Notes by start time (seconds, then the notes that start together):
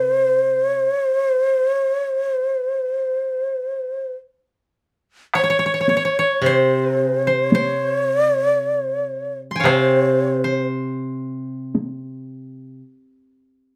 Already playing: C3 A#4 C5
0.18 B4
0.49 C5
0.71 C#5
1.11 C5
1.79 C#5
2.19 C5
5.34 C#5, taiko rim
5.44 C#5
5.50 C#5
5.59 C#5
5.66 C#5
5.74 C#5
5.81 C#5
5.89 C#5, taiko high
5.97 C#5
6.05 C#5
6.19 C#5
6.42 C3 C5
6.46 C5
6.98 G#4
7.27 C5
7.50 C#5, taiko high
7.55 C5
7.98 C#5
8.16 D5
8.34 C#5
8.54 D5
8.72 C#5
9.51 C6
9.56 G5 G#5
9.60 C3 C5 C#5 F5
9.65 C5, taiko rim
10.44 C5
11.75 taiko high